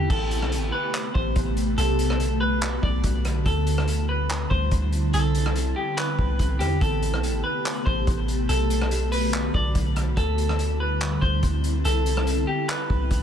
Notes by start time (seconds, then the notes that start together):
0.10 A1 C3 A3 B3 G4 A4, kick, crash
0.31 closed hi-hat
0.41 B1, cross-stick
0.52 closed hi-hat
0.57 A1
0.72 B4
0.94 clap, closed hi-hat
1.14 A1 C5, kick
1.36 A1, kick, closed hi-hat
1.57 closed hi-hat
1.78 B1 D3 F#4 A4, closed hi-hat
1.99 closed hi-hat
2.10 cross-stick
2.20 closed hi-hat
2.41 B4
2.62 clap, closed hi-hat
2.83 B1 D5, kick
3.04 B1, kick, closed hi-hat
3.25 cross-stick, closed hi-hat
3.46 D2 G3 C4 E4 A4, kick, closed hi-hat
3.67 closed hi-hat
3.78 cross-stick
3.88 closed hi-hat
4.09 B4
4.29 clap, closed hi-hat
4.50 D2 C5, kick
4.71 D2, kick, closed hi-hat
4.93 closed hi-hat
5.13 C2 B3 C4 A4, closed hi-hat
5.35 closed hi-hat
5.46 cross-stick
5.56 closed hi-hat
5.76 G4
5.97 B4, clap, closed hi-hat
6.19 C2, kick
6.39 C2, kick, closed hi-hat
6.59 E2 G4, cross-stick, closed hi-hat
6.81 A1 C3 A3 G4 A4, kick, closed hi-hat
7.02 closed hi-hat
7.13 B1, cross-stick
7.23 closed hi-hat
7.29 A1
7.44 B4
7.65 clap, closed hi-hat
7.86 A1 C5, kick
8.07 A1, kick, closed hi-hat
8.28 closed hi-hat
8.49 B1 D3 F#4 A4, closed hi-hat
8.70 closed hi-hat
8.82 cross-stick
8.91 closed hi-hat
9.12 B4, open hi-hat
9.33 clap, closed hi-hat
9.54 B1 D5, kick
9.75 B1, kick, closed hi-hat
9.96 cross-stick, closed hi-hat
10.17 D2 G3 C4 E4 A4, kick, closed hi-hat
10.38 closed hi-hat
10.49 cross-stick
10.59 closed hi-hat
10.80 B4
11.01 clap, closed hi-hat
11.21 D2 C5, kick
11.43 D2, kick, closed hi-hat
11.64 closed hi-hat
11.85 C2 B3 A4, closed hi-hat
12.06 closed hi-hat
12.17 cross-stick
12.27 closed hi-hat
12.47 G4
12.68 B4, clap, closed hi-hat
12.90 C2, kick
13.11 C2, kick, closed hi-hat